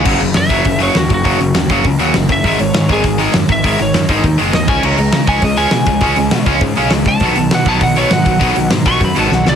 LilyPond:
<<
  \new Staff \with { instrumentName = "Lead electric guitar" } { \time 4/4 \key cis \mixolydian \tempo 4 = 201 r4 e''4. cis''8 fis'8 fis'8~ | fis'4. r2 e''8 | e''8 cis''4 gis'4 r4 e''8 | e''8 cis''4 dis'4 r8 dis''8 gis''8 |
ais''4. gis''8 dis''8 gis''4.~ | gis''4. r2 a''8~ | a''4 fis''8 a''8 fis''8 cis''8 fis''4~ | fis''4 r8 cis'''8 b''8 a''8 fis''8 d''8 | }
  \new Staff \with { instrumentName = "Distorted electric guitar" } { \clef bass \time 4/4 \key cis \mixolydian <fis, cis fis>8 <fis, cis>8 <fis, cis>8 <fis, cis fis>8 <fis, cis>8 <fis, cis fis>8 <fis, cis>8 <fis, cis>8 | <fis, cis fis>8 <fis, cis>8 <fis, cis>8 <fis, cis fis>8 <fis, cis>8 <fis, cis fis>8 <fis, cis>8 <fis, cis>8 | <gis, dis gis>8 <gis, dis>8 <gis, dis>8 <gis, dis gis>8 <gis, dis>8 <gis, dis gis>8 <gis, dis>8 <gis, dis>8 | <gis, dis gis>8 <gis, dis>8 <gis, dis>8 <gis, dis gis>8 <gis, dis>8 <gis, dis gis>8 <gis, dis>8 <cis gis cis'>8 |
<cis gis cis'>8 <cis gis>8 <cis gis>8 <cis gis cis'>8 <cis gis>8 <cis gis cis'>8 <cis gis>8 <cis gis>8 | <cis gis cis'>8 <cis gis>8 <cis gis>8 <cis gis cis'>8 <cis gis>8 <cis gis cis'>8 <cis gis>8 <cis gis>8 | <b, fis b>8 <b, fis>8 <b, fis>8 <b, fis b>8 <b, fis>8 <b, fis b>8 <b, fis>8 <b, fis>8 | <b, fis b>8 <b, fis>8 <b, fis>8 <b, fis b>8 <b, fis>8 <b, fis b>8 <b, fis>8 <b, fis>8 | }
  \new Staff \with { instrumentName = "Overdriven electric guitar" } { \clef bass \time 4/4 \key cis \mixolydian <fis, cis fis>8 <fis, cis>8 <fis, cis>8 <fis, cis fis>8 <fis, cis>8 <fis, cis fis>8 <fis, cis>8 <fis, cis>8 | <fis, cis fis>8 <fis, cis>8 <fis, cis>8 <fis, cis fis>8 <fis, cis>8 <fis, cis fis>8 <fis, cis>8 <fis, cis>8 | <gis, dis gis>8 <gis, dis>8 <gis, dis>8 <gis, dis gis>8 <gis, dis>8 <gis, dis gis>8 <gis, dis>8 <gis, dis>8 | <gis, dis gis>8 <gis, dis>8 <gis, dis>8 <gis, dis gis>8 <gis, dis>8 <gis, dis gis>8 <gis, dis>8 <cis gis cis'>8 |
<cis gis cis'>8 <cis gis>8 <cis gis>8 <cis gis cis'>8 <cis gis>8 <cis gis cis'>8 <cis gis>8 <cis gis>8 | <cis gis cis'>8 <cis gis>8 <cis gis>8 <cis gis cis'>8 <cis gis>8 <cis gis cis'>8 <cis gis>8 <cis gis>8 | <b, dis fis>8 <b, dis>8 <b, dis>8 <b, dis fis>8 <b, dis>8 <b, dis fis>8 <b, dis>8 <b, dis>8 | <b, dis fis>8 <b, dis>8 <b, dis>8 <b, dis fis>8 <b, dis>8 <b, dis fis>8 <b, dis>8 <b, dis>8 | }
  \new Staff \with { instrumentName = "Picked electric bass" } { \clef bass \time 4/4 \key cis \mixolydian fis,,8 fis,,8 fis,8 fis,,8 fis,,4 dis,8 fis,,8 | fis,,8 fis,,8 dis,8 fis,,8 cis,8 dis,8 fis,,8 fis,,8 | gis,,8 gis,,8 gis,8 gis,,8 gis,,4 fis,8 gis,,8 | gis,,8 gis,,8 fis,8 gis,,8 dis,8 fis,,8 dis,8 cis,8 |
cis,8 cis,8 cis8 cis,8 cis,4 b,8 cis,8 | cis,8 cis,8 b,8 cis,8 gis,8 b,,8 cis,8 cis,8 | b,,8 b,,8 b,8 b,,8 b,,4 gis,8 b,,8 | b,,8 b,,8 gis,8 b,,8 fis,8 gis,,8 b,,8 cis,8 | }
  \new DrumStaff \with { instrumentName = "Drums" } \drummode { \time 4/4 <cymc bd>8 hho8 <hho sn>8 <hho bd>8 <hho bd>8 hho8 <hho sn>8 <hho bd>8 | <hho bd>8 hho8 <hho sn>8 <hho bd>8 <hho bd>8 hho8 <hho sn>8 <hho bd>8 | <hho bd>8 hho8 <hho sn>8 <hho bd>8 <hho bd>8 hho8 <hho sn>8 <hho bd>8 | <hho bd>8 hho8 <hho sn>8 <hho bd>8 <hho bd>8 hho8 <hho sn>8 <hho bd>8 |
cymc8 hho8 <hho sn>8 <hho bd>8 <hho bd>8 hho8 <hho sn>8 <hho bd>8 | <hho bd>8 hho8 <hho sn>8 <hho bd>8 <hho bd>8 hho8 <hho sn>8 <hho bd>8 | <hho bd>8 hho8 <hho sn>8 <hho bd>8 <hho bd>8 hho8 <hho sn>8 <hho bd>8 | <hho bd>8 hho8 <hho sn>8 <hho bd>8 <hho bd>8 hho8 sn8 sn8 | }
>>